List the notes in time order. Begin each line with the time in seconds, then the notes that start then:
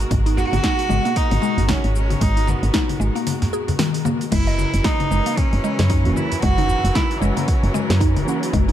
Already playing: B2 G#3 F#4 A#4
0.00 open hi-hat, shaker
0.11 G#1 G#3, kick, open hi-hat, low conga, shaker
0.26 D#4, open hi-hat
0.37 F#4, snare, udu, shaker
0.53 G#1, open hi-hat, low conga, shaker
0.63 D#4, kick, snare, open hi-hat, shaker
0.79 open hi-hat
0.89 G#1 G#3, low conga, shaker
1.05 A#3, open hi-hat, shaker
1.16 D#4, kick, open hi-hat, shaker
1.31 G#1, open hi-hat, low conga
1.42 G#3, shaker
1.58 G#1, open hi-hat, udu, shaker
1.68 C#4 D#4, kick, snare, open hi-hat, low conga, shaker
1.84 G#1, open hi-hat
1.95 C#4, shaker
2.10 open hi-hat, low conga, shaker
2.21 G#1 G#3 D#4, kick, open hi-hat, shaker
2.37 D#4, open hi-hat
2.47 B3, snare, low conga, udu, shaker
2.63 G#1, open hi-hat, shaker
2.74 D#4, kick, snare, open hi-hat, shaker
2.89 open hi-hat, low conga
3.00 G#1 G#3, shaker
3.15 A#3, open hi-hat, shaker
3.27 open hi-hat, low conga, shaker
3.42 snare, open hi-hat, udu
3.53 G#4, shaker
3.68 open hi-hat, low conga, udu, shaker
3.79 D#3, snare, open hi-hat, shaker
3.94 open hi-hat
4.05 A#3, low conga, shaker
4.21 open hi-hat, shaker
4.32 F#1 C#3 E3 F#3 G#3 E4 A#4, kick, open hi-hat, crash, shaker
4.47 D#5, open hi-hat
4.58 low conga, shaker
4.74 F#1, open hi-hat, shaker
4.84 D#4, kick, snare, open hi-hat, shaker
5.00 open hi-hat, low conga
5.11 F#1 G#3, shaker
5.26 A#3, open hi-hat, shaker
5.37 C#4, kick, open hi-hat, low conga, shaker
5.53 F#1, open hi-hat
5.64 G#3, shaker
5.79 F#2, snare, open hi-hat, low conga, shaker
5.90 D#4, kick, open hi-hat, shaker
6.04 E1 E3 A#3 C#4 F#4, open hi-hat, udu
6.16 E4, low conga, shaker
6.32 open hi-hat, udu, shaker
6.42 F#1 G#3 F#4, kick, open hi-hat, shaker
6.58 D#4, open hi-hat, low conga
6.69 udu, shaker
6.84 F#1, open hi-hat, shaker
6.95 D#4 E4, kick, snare, open hi-hat, low conga, shaker
7.11 open hi-hat
7.21 F#1 G#3 C#4, shaker
7.37 A#3, open hi-hat, low conga, shaker
7.48 kick, open hi-hat, shaker
7.63 F#1, open hi-hat
7.74 G#3, low conga, shaker
7.90 F#2, snare, open hi-hat, shaker
8.00 D#4, kick, open hi-hat, shaker
8.16 E1, open hi-hat, low conga
8.25 E3 A#3 C#4 F#4, shaker
8.43 open hi-hat, shaker
8.53 F#1 G#3, kick, open hi-hat, low conga, shaker
8.68 D#4, open hi-hat